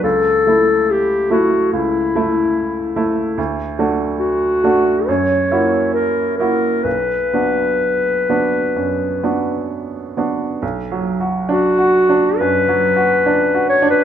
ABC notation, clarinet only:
X:1
M:4/4
L:1/16
Q:1/4=69
K:Bm
V:1 name="Clarinet"
A4 G2 F2 E6 z2 | z4 F4 c4 ^A2 A2 | B12 z4 | z4 F4 B6 c B |]